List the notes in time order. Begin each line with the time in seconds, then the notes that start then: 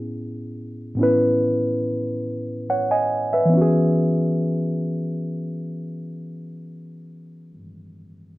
Already playing: A2 B3 C#4 E4 G#4
0.95 A2 B3 C#4
1.01 E4 B4
2.70 C#5 F#5
2.91 D#5 G#5
3.33 B4 E5
3.45 E3
3.50 B3 C#4
3.57 F#4
3.62 G#4